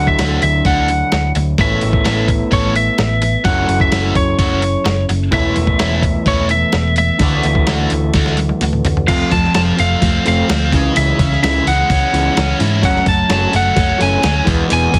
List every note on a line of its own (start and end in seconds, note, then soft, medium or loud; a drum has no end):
0.00 0.14 D2 medium
0.00 1.57 D3 medium
0.00 1.57 F#3 loud
0.00 1.58 D4 medium
0.00 1.60 E4 medium
0.00 1.61 A4 loud
0.07 0.42 E5 medium
0.07 kick medium
0.19 0.37 D2 medium
0.19 0.43 D3 medium
0.19 0.42 A3 medium
0.19 0.42 D4 medium
0.19 0.42 F#4 medium
0.19 snare loud
0.19 open hi-hat medium
0.42 0.60 D2 medium
0.42 0.64 E5 medium
0.42 muted overdriven electric guitar stroke soft
0.42 open hi-hat medium
0.65 1.01 D2 medium
0.65 0.89 D3 medium
0.65 0.89 A3 medium
0.65 0.89 D4 medium
0.65 0.88 F#4 medium
0.65 1.32 F#5 medium
0.65 kick loud
0.65 open hi-hat medium
0.88 muted overdriven electric guitar stroke soft
0.88 open hi-hat soft
1.12 1.30 D2 medium
1.12 muted overdriven electric guitar stroke soft
1.12 snare loud
1.12 open hi-hat medium
1.35 1.53 D2 medium
1.35 muted overdriven electric guitar stroke medium
1.35 open hi-hat soft
1.58 1.77 A1 medium
1.58 1.82 E3 medium
1.58 3.44 A3 medium
1.58 1.81 A3 medium
1.58 3.44 B3 medium
1.58 1.81 C#4 medium
1.58 3.46 E4 medium
1.58 1.81 A4 medium
1.58 3.47 A4 medium
1.58 3.47 C#5 loud
1.58 2.53 E5 medium
1.58 kick loud
1.58 open hi-hat medium
1.81 2.00 A1 medium
1.81 muted overdriven electric guitar stroke soft
1.81 open hi-hat soft
1.93 kick medium
2.04 2.41 A1 medium
2.04 2.28 E3 medium
2.04 2.28 A3 medium
2.04 2.29 C#4 loud
2.04 2.28 A4 medium
2.04 snare loud
2.04 open hi-hat medium
2.28 muted overdriven electric guitar stroke soft
2.28 kick medium
2.28 open hi-hat medium
2.51 2.88 A1 medium
2.51 2.74 E3 medium
2.51 2.74 A3 medium
2.51 2.74 C#4 medium
2.51 2.74 A4 medium
2.51 2.74 C#5 medium
2.51 kick loud
2.51 open hi-hat medium
2.75 3.48 E5 medium
2.75 muted overdriven electric guitar stroke soft
2.75 open hi-hat soft
2.98 3.35 A1 medium
2.98 muted overdriven electric guitar stroke soft
2.98 snare loud
2.98 open hi-hat medium
3.22 muted overdriven electric guitar stroke medium
3.22 open hi-hat soft
3.44 3.63 F#1 medium
3.44 3.68 F#3 medium
3.44 5.31 F#3 medium
3.44 3.67 A3 medium
3.44 3.67 C#4 medium
3.44 5.31 C#4 medium
3.44 5.33 E4 medium
3.44 3.67 F#4 medium
3.44 5.34 A4 medium
3.44 5.33 C#5 medium
3.44 3.78 F#5 loud
3.44 kick loud
3.44 open hi-hat medium
3.68 3.87 F#1 medium
3.68 muted overdriven electric guitar stroke soft
3.68 open hi-hat soft
3.80 4.13 E5 medium
3.80 kick medium
3.92 4.10 F#1 medium
3.92 4.14 F#3 medium
3.92 4.14 A3 medium
3.92 4.14 C#4 medium
3.92 4.14 F#4 medium
3.92 snare loud
3.92 open hi-hat medium
4.15 4.33 F#1 medium
4.15 4.38 C#5 medium
4.15 muted overdriven electric guitar stroke soft
4.15 kick medium
4.15 open hi-hat medium
4.39 4.75 F#1 medium
4.39 4.62 F#3 medium
4.39 4.62 A3 medium
4.39 4.62 C#4 medium
4.39 4.61 F#4 medium
4.39 5.05 C#5 medium
4.39 kick loud
4.39 open hi-hat medium
4.62 muted overdriven electric guitar stroke soft
4.62 open hi-hat soft
4.85 5.04 F#1 medium
4.85 muted overdriven electric guitar stroke soft
4.85 snare loud
4.85 open hi-hat medium
5.09 5.27 F#1 medium
5.09 muted overdriven electric guitar stroke medium
5.09 open hi-hat soft
5.31 5.50 E1 medium
5.31 7.18 E3 medium
5.31 5.56 E3 medium
5.31 7.20 A3 medium
5.31 5.55 A3 medium
5.31 7.19 B3 medium
5.31 5.55 C#4 medium
5.31 5.54 E4 medium
5.31 7.20 E4 medium
5.31 7.21 A4 medium
5.31 7.20 C#5 medium
5.31 6.27 E5 loud
5.31 kick loud
5.31 open hi-hat medium
5.56 5.74 E1 medium
5.56 muted overdriven electric guitar stroke medium
5.56 open hi-hat soft
5.67 kick medium
5.79 6.16 E1 medium
5.79 6.03 E3 medium
5.79 6.03 A3 medium
5.79 6.03 C#4 medium
5.79 6.02 E4 medium
5.79 snare loud
5.79 open hi-hat medium
6.02 muted overdriven electric guitar stroke soft
6.02 kick medium
6.02 open hi-hat soft
6.26 6.62 E1 medium
6.26 6.50 E3 medium
6.26 6.50 A3 medium
6.26 6.50 C#4 medium
6.26 6.49 E4 medium
6.26 6.49 C#5 medium
6.26 kick loud
6.26 open hi-hat medium
6.49 6.94 E5 loud
6.49 muted overdriven electric guitar stroke soft
6.49 open hi-hat soft
6.72 7.10 E1 medium
6.72 muted overdriven electric guitar stroke soft
6.72 snare loud
6.72 open hi-hat medium
6.96 8.58 E5 medium
6.96 muted overdriven electric guitar stroke medium
6.96 open hi-hat soft
7.19 7.38 D2 medium
7.19 9.06 D3 medium
7.19 7.44 D3 medium
7.19 9.07 E3 medium
7.19 9.07 A3 medium
7.19 7.45 A3 medium
7.19 9.07 D4 loud
7.19 7.45 D4 medium
7.19 9.08 F#4 medium
7.19 kick loud
7.19 open hi-hat medium
7.23 7.44 F#4 medium
7.23 9.08 D5 loud
7.43 7.62 D2 medium
7.43 muted overdriven electric guitar stroke soft
7.43 open hi-hat soft
7.55 kick medium
7.67 7.85 D2 medium
7.67 7.92 D3 medium
7.67 7.92 A3 medium
7.67 7.91 D4 medium
7.67 7.91 F#4 loud
7.67 snare loud
7.67 open hi-hat medium
7.90 8.09 D2 medium
7.90 muted overdriven electric guitar stroke soft
7.90 open hi-hat medium
8.14 8.50 D2 medium
8.14 8.38 D3 medium
8.14 8.38 A3 medium
8.14 8.38 D4 medium
8.14 8.38 F#4 medium
8.14 kick loud
8.14 snare medium
8.14 open hi-hat medium
8.26 snare medium
8.37 muted overdriven electric guitar stroke soft
8.37 open hi-hat soft
8.37 high tom medium
8.49 high tom medium
8.61 8.79 D2 medium
8.61 muted overdriven electric guitar stroke soft
8.61 open hi-hat medium
8.61 mid tom medium
8.73 mid tom medium
8.85 9.03 D2 medium
8.85 muted overdriven electric guitar stroke medium
8.85 floor tom medium
8.85 open hi-hat medium
8.97 floor tom medium
9.08 9.23 F1 medium
9.08 10.26 F2 medium
9.08 9.30 F3 medium
9.08 9.30 A3 medium
9.08 9.31 C4 medium
9.08 9.32 F5 medium
9.08 kick loud
9.08 open hi-hat medium
9.08 crash medium
9.31 9.47 F1 medium
9.31 9.53 F3 medium
9.31 9.53 A3 medium
9.31 9.54 A5 medium
9.31 kick medium
9.31 open hi-hat soft
9.44 snare soft
9.54 9.70 F1 medium
9.54 9.77 F3 medium
9.54 10.25 F3 medium
9.54 9.77 A3 medium
9.54 9.78 C4 loud
9.54 9.62 A5 loud
9.54 snare loud
9.54 open hi-hat medium
9.78 9.94 F1 medium
9.78 10.00 F3 medium
9.78 10.00 A3 medium
9.78 10.73 A3 medium
9.78 10.27 F5 medium
9.78 open hi-hat medium
10.02 10.17 F1 medium
10.02 10.23 F3 medium
10.02 10.23 A3 medium
10.02 10.49 C4 medium
10.02 kick loud
10.02 open hi-hat medium
10.25 10.41 F1 medium
10.25 10.48 F3 medium
10.25 10.73 F3 medium
10.25 10.48 A3 loud
10.25 10.48 C4 loud
10.25 10.71 F5 medium
10.25 open hi-hat medium
10.49 10.73 D2 medium
10.49 10.70 F3 medium
10.49 10.70 A3 medium
10.49 10.73 C4 medium
10.49 snare loud
10.49 open hi-hat medium
10.72 10.87 C#2 medium
10.72 10.94 C#3 medium
10.72 10.95 C#3 medium
10.72 10.95 E3 medium
10.72 10.95 G#3 medium
10.72 kick medium
10.72 open hi-hat medium
10.96 11.11 C#2 medium
10.96 11.18 C#3 medium
10.96 12.14 C#3 medium
10.96 11.18 E3 medium
10.96 11.19 G#3 loud
10.96 11.40 E5 medium
10.96 open hi-hat medium
11.19 11.34 C#2 medium
11.19 11.40 C#3 medium
11.19 11.41 E3 medium
11.19 kick medium
11.19 open hi-hat medium
11.32 snare soft
11.42 11.58 C#2 medium
11.42 11.65 C#3 medium
11.42 12.13 E3 medium
11.42 11.65 E3 medium
11.42 11.66 G#3 medium
11.42 11.67 E5 medium
11.42 snare loud
11.42 open hi-hat medium
11.67 11.81 C#2 medium
11.67 11.88 C#3 medium
11.67 11.88 E3 medium
11.67 12.84 G#3 medium
11.67 12.57 F#5 loud
11.67 open hi-hat medium
11.90 12.05 C#2 medium
11.90 12.11 C#3 medium
11.90 12.11 E3 medium
11.90 12.36 C#4 medium
11.90 kick loud
11.90 open hi-hat medium
12.13 12.28 C#2 medium
12.13 12.34 C#3 medium
12.13 12.35 E3 medium
12.13 12.84 E3 medium
12.13 12.36 G#3 loud
12.13 open hi-hat medium
12.36 12.52 C#2 medium
12.36 12.57 C#3 medium
12.36 12.58 E3 medium
12.36 12.84 C#4 medium
12.36 snare loud
12.36 open hi-hat medium
12.59 12.85 G#2 medium
12.59 12.81 C#3 medium
12.59 12.81 E3 medium
12.59 12.84 E4 medium
12.59 open hi-hat medium
12.82 12.98 F#1 medium
12.82 14.01 F#2 medium
12.82 13.04 F#3 medium
12.82 13.05 A3 medium
12.82 13.06 C#4 loud
12.82 13.06 F#5 loud
12.82 kick loud
12.82 open hi-hat medium
12.96 snare soft
13.05 13.21 F#1 medium
13.05 13.27 F#3 medium
13.05 13.27 A3 medium
13.05 13.32 A5 loud
13.05 kick medium
13.05 open hi-hat medium
13.29 13.45 F#1 medium
13.29 13.51 F#3 medium
13.29 13.99 F#3 medium
13.29 13.51 A3 loud
13.29 13.52 C#4 medium
13.29 13.56 A5 loud
13.29 snare loud
13.29 open hi-hat medium
13.52 13.68 F#1 medium
13.52 13.74 F#3 medium
13.52 13.74 A3 medium
13.52 14.47 A3 medium
13.52 14.02 F#5 loud
13.52 open hi-hat medium
13.75 13.91 F#1 medium
13.75 13.97 F#3 medium
13.75 13.98 A3 medium
13.75 14.23 C#4 medium
13.75 kick loud
13.75 open hi-hat medium
13.98 14.15 F#1 medium
13.98 14.21 F#3 medium
13.98 14.47 F#3 medium
13.98 14.22 A3 medium
13.98 14.22 C#4 loud
13.98 14.45 G#5 medium
13.98 open hi-hat medium
14.22 14.39 D2 medium
14.22 14.44 F#3 medium
14.22 14.44 A3 medium
14.22 14.48 C#4 medium
14.22 snare loud
14.22 open hi-hat medium
14.45 14.62 E1 medium
14.45 14.70 E2 medium
14.45 14.68 E3 medium
14.45 14.68 G#3 medium
14.45 14.69 B3 loud
14.45 kick loud
14.45 open hi-hat medium
14.69 14.86 E1 medium
14.69 14.99 E2 medium
14.69 14.92 E3 medium
14.69 14.92 G#3 medium
14.69 14.93 B3 loud
14.69 open hi-hat medium
14.73 14.99 G#5 loud
14.93 14.99 E1 medium
14.93 14.99 E3 medium
14.93 14.99 G#3 medium
14.93 kick medium
14.93 open hi-hat medium